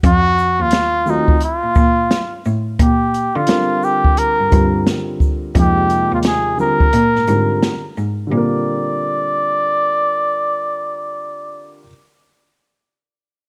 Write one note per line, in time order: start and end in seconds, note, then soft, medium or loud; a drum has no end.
0.03 0.59 F2 loud
0.03 0.63 F#4 loud
0.03 kick loud
0.03 closed hi-hat medium
0.38 shaker soft
0.60 1.15 D#2 medium
0.60 1.11 F4 loud
0.71 snare loud
0.71 closed hi-hat medium
1.06 1.33 D#3 medium
1.06 1.33 F#3 medium
1.06 1.33 A3 medium
1.06 1.34 C4 medium
1.06 1.34 F4 medium
1.06 shaker medium
1.10 1.43 D#4 medium
1.28 kick medium
1.41 2.42 F4 medium
1.41 closed hi-hat medium
1.63 1.73 A#2 soft
1.75 2.03 A#2 medium
1.75 kick medium
1.75 shaker medium
2.11 snare loud
2.11 closed hi-hat medium
2.45 2.73 A2 medium
2.45 shaker soft
2.79 3.24 A#2 loud
2.79 3.37 G4 medium
2.79 kick medium
2.79 closed hi-hat medium
3.14 closed hi-hat soft
3.14 shaker soft
3.36 3.91 D3 medium
3.36 3.86 F4 medium
3.47 4.46 D3 medium
3.47 4.46 G3 medium
3.47 4.47 C4 medium
3.47 4.47 F4 medium
3.47 4.47 A#4 medium
3.47 snare loud
3.47 closed hi-hat medium
3.83 4.20 G4 loud
3.83 shaker soft
4.04 kick medium
4.17 4.87 A#4 medium
4.17 closed hi-hat medium
4.40 4.49 G2 soft
4.50 4.80 G2 medium
4.50 5.49 D3 medium
4.50 5.50 G3 medium
4.50 5.50 C4 medium
4.50 5.50 F4 medium
4.50 5.51 A#4 medium
4.50 kick medium
4.50 closed hi-hat soft
4.50 shaker soft
4.87 snare loud
4.87 closed hi-hat medium
5.20 kick medium
5.20 shaker soft
5.54 6.00 F2 loud
5.54 6.53 C3 medium
5.54 6.53 F3 medium
5.54 6.54 G#3 medium
5.54 6.54 A#3 medium
5.54 6.54 D#4 medium
5.54 kick medium
5.54 closed hi-hat medium
5.59 6.10 G4 loud
5.90 closed hi-hat soft
5.90 shaker soft
6.12 6.67 D#2 medium
6.12 6.19 F4 medium
6.23 snare loud
6.23 closed hi-hat medium
6.27 6.58 G#4 medium
6.57 6.85 D3 medium
6.57 6.85 G3 medium
6.57 6.85 C4 medium
6.57 6.86 F4 medium
6.57 6.86 A#4 medium
6.57 7.94 A#4 loud
6.57 shaker soft
6.80 kick medium
6.93 7.11 A#2 loud
6.93 closed hi-hat medium
7.16 7.25 G#2 soft
7.16 snare soft
7.27 7.56 G#2 medium
7.27 7.70 D3 medium
7.27 7.71 G3 medium
7.27 7.71 C4 medium
7.27 7.71 F4 medium
7.27 7.72 A#4 medium
7.27 closed hi-hat soft
7.27 shaker soft
7.63 snare loud
7.63 closed hi-hat medium
7.97 8.25 G#2 medium
7.97 shaker soft
8.27 11.79 D3 medium
8.27 11.82 G3 medium
8.32 11.83 A#2 medium
8.32 11.84 C4 medium
8.32 11.86 F4 medium
8.32 11.83 D5 medium
8.37 11.89 A#4 medium